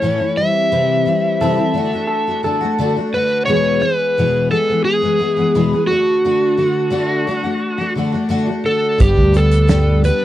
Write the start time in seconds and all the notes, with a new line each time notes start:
Already playing: C#5
0.02 A2 E3 A3 C#4 E4
0.20 A3 C#4 E4
0.36 E3 G3 C4 E5
0.40 E4
0.72 C3 E3 G3 C4 E4
1.05 E3 G3 C4 E4
1.41 C3 E3 G3 C4 E4 A4
1.57 G3 C4 E4
1.74 D3 A3 D4 F#4
1.93 A3 D4 F#4
2.07 A4
2.27 A3 D4 F#4
2.43 D3 A3 D4 F#4 A4
2.61 A3 D4 F#4
2.78 D3 A3 D4 F#4
2.97 A3 D4 F#4
3.13 D3 A3 D4 F#4 B4
3.45 E2 B2 E3 G#3 B3 C#5
3.50 G#4
3.80 E3 G#3 B3 G#4 B4
4.17 E2 B2 E3 G#3 B3 G#4
4.50 E3 G#3 B3 G#4 A4
4.69 E3 G#3 B3 G#4
4.85 G#4
5.02 E3 G#3 B3 G#4
5.19 E3 G#3 B3
5.23 G#4
5.37 E3 G#3 B3 G#4
5.55 E2 B2 E3 G#3 B3 G#4
5.73 E3 G#3 B3 G#4
5.87 D3 F#4
5.91 A3 D4 F#4
6.25 D3 A3 D4 F#4
6.57 D3 A3 D4 F#4
6.90 D3 A3 D4 F#4
7.27 D3 A3 D4 F#4
7.43 A3 D4 F#4
7.78 A3 D4 F#4
7.95 D3 A3 D4 F#4
8.12 A3 D4 F#4
8.29 D3 A3 D4 F#4
8.47 A3 D4 F#4
8.64 D3 A3 D4 F#4 A4
8.98 G1 G2 D3 G3 B3 D4 G4, kick, closed hi-hat
9.17 D2, kick
9.32 G3 B3 D4 G4, closed hi-hat
9.37 A4
9.51 closed hi-hat
9.67 G2 D3 G3 B3 D4 G4, snare, closed hi-hat
10.03 G3 B3 D4 G4 B4, closed hi-hat